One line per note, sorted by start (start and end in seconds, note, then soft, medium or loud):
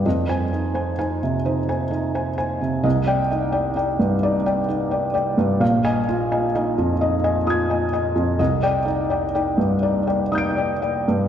0.06 2.81 F2 medium
0.06 0.43 D#5 medium
0.29 0.50 C5 soft
0.29 0.50 G#5 medium
0.53 0.90 D#4 soft
0.74 0.96 C5 soft
0.74 0.96 G#5 medium
0.99 1.36 D#4 soft
0.99 1.20 C5 soft
0.99 1.20 G#5 soft
1.23 1.60 C3 soft
1.45 1.83 D#4 soft
1.45 1.67 C5 medium
1.69 1.90 C5 soft
1.69 1.90 G#5 medium
1.91 2.29 D#4 soft
2.15 2.36 C5 soft
2.15 2.36 G#5 soft
2.38 2.59 C5 soft
2.38 2.59 G#5 medium
2.61 2.85 C3 medium
2.83 5.57 C2 medium
2.83 3.21 D#5 medium
3.07 3.28 D5 soft
3.07 3.28 G5 medium
3.31 3.68 D#4 medium
3.52 3.74 D5 soft
3.52 3.74 G5 medium
3.76 4.13 D#4 soft
3.76 3.97 D5 soft
3.76 3.98 G5 soft
3.99 4.37 G2 medium
4.23 4.60 D#4 medium
4.23 4.45 D5 medium
4.46 4.67 D5 medium
4.46 4.67 G5 medium
4.68 5.05 D#4 medium
4.91 5.12 D5 soft
4.91 5.12 G5 soft
5.14 5.35 D5 medium
5.14 5.36 G5 medium
5.38 5.61 G2 medium
5.60 8.35 A#1 medium
5.60 5.98 F5 medium
5.84 6.05 D#5 medium
5.84 6.05 G#5 medium
6.09 6.45 F4 medium
6.32 6.52 D#5 medium
6.32 6.52 G#5 medium
6.55 6.91 D#4 medium
6.55 6.75 D#5 medium
6.55 6.75 G#5 medium
6.78 7.14 F2 medium
7.01 7.38 D#4 medium
7.01 7.23 D#5 medium
7.24 7.44 D#5 medium
7.24 7.44 G#5 medium
7.47 7.83 F4 medium
7.47 8.36 D#6 soft
7.47 8.37 G#6 soft
7.70 7.91 D#5 soft
7.70 7.91 G#5 soft
7.93 8.14 D#5 soft
7.93 8.14 G#5 medium
8.16 8.39 F2 medium
8.39 11.28 C2 medium
8.39 8.77 D#5 medium
8.63 8.84 D5 medium
8.63 8.84 G5 medium
8.85 9.24 D#4 medium
9.10 9.32 D5 medium
9.10 9.33 G5 medium
9.35 9.73 D#4 soft
9.35 9.56 D5 soft
9.35 9.57 G5 medium
9.58 9.97 G2 soft
9.83 10.22 D#4 soft
9.83 10.06 D5 medium
10.07 10.29 D5 soft
10.07 10.29 G5 soft
10.32 10.72 D#4 soft
10.32 11.28 D#6 soft
10.32 11.28 G6 soft
10.38 11.28 D7 soft
10.57 10.79 D5 soft
10.57 10.80 G5 soft
10.82 11.04 D5 soft
10.82 11.05 G5 soft
11.08 11.28 G2 medium